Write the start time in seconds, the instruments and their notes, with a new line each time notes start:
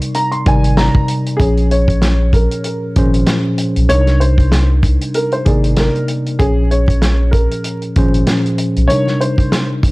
Already playing: tine electric piano C3 G3 D#4 A#4 D5
0.02 closed hi-hat
0.14 upright piano A#5, closed hi-hat
0.32 upright piano C6, closed hi-hat
0.45 sub bass G#1, tine electric piano C3 G3 D#4 A#4 D5, upright piano G#5, kick, closed hi-hat
0.64 closed hi-hat
0.77 upright piano A#5, snare
0.95 kick
1.08 closed hi-hat
1.26 closed hi-hat
1.37 sub bass A#1, tine electric piano A#2 F3 C#4 G#4, upright piano G#4, kick, closed hi-hat
1.41 tine electric piano C#5
1.57 closed hi-hat
1.71 upright piano C#5, closed hi-hat
1.88 kick, closed hi-hat
2.02 snare, closed hi-hat
2.33 upright piano A#4, kick, closed hi-hat
2.51 closed hi-hat
2.64 closed hi-hat
2.96 sub bass G#1, tine electric piano A#2 F3 C#4 G#4 C5, kick, closed hi-hat
3.14 closed hi-hat
3.26 snare, closed hi-hat
3.58 closed hi-hat
3.76 sub bass B1, closed hi-hat
3.89 sub bass C2, tine electric piano C3 G3 D4 D#4 A#4, upright piano C#5, closed hi-hat
4.07 snare, closed hi-hat
4.20 upright piano C5, closed hi-hat
4.38 kick, closed hi-hat
4.52 snare, closed hi-hat
4.83 kick, closed hi-hat
5.01 closed hi-hat
5.14 upright piano A#4, closed hi-hat
5.32 upright piano C5, closed hi-hat
5.45 sub bass G#1, tine electric piano C3 A#3 D#4 A#4 D5, upright piano G#4, kick, closed hi-hat
5.64 closed hi-hat
5.76 upright piano A#4, snare, closed hi-hat
5.96 closed hi-hat
6.08 closed hi-hat
6.26 closed hi-hat
6.39 sub bass A#1, tine electric piano A#2 F3 C#4 G#4 C#5, upright piano G#4, kick, closed hi-hat
6.71 upright piano C#5, closed hi-hat
6.88 kick, closed hi-hat
7.02 snare, closed hi-hat
7.31 upright piano A#4, kick, closed hi-hat
7.51 closed hi-hat
7.64 closed hi-hat
7.82 closed hi-hat
7.96 sub bass G#1, tine electric piano A#2 F3 C#4 G#4 C5, kick, closed hi-hat
8.14 closed hi-hat
8.27 snare, closed hi-hat
8.46 closed hi-hat
8.58 closed hi-hat
8.76 sub bass B1, closed hi-hat
8.88 tine electric piano C3 G3 D#4 A#4, upright piano C#5, closed hi-hat
8.92 tine electric piano D4
9.07 snare
9.21 upright piano C5, closed hi-hat
9.38 kick, closed hi-hat
9.52 snare, closed hi-hat
9.83 kick, closed hi-hat